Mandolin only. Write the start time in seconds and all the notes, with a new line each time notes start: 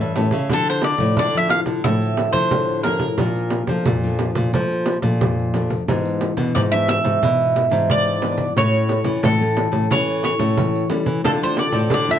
0.53 A4
0.70 C5
0.84 D5
1.19 D5
1.37 E5
1.50 F5
1.84 E5
2.33 C5
2.83 A#4
6.55 D5
6.72 E5
6.89 E5
7.91 D5
8.58 C#5
9.25 A4
9.92 C#5
10.24 C#5
11.25 A4
11.43 C5
11.59 D5
11.94 D5
12.11 E5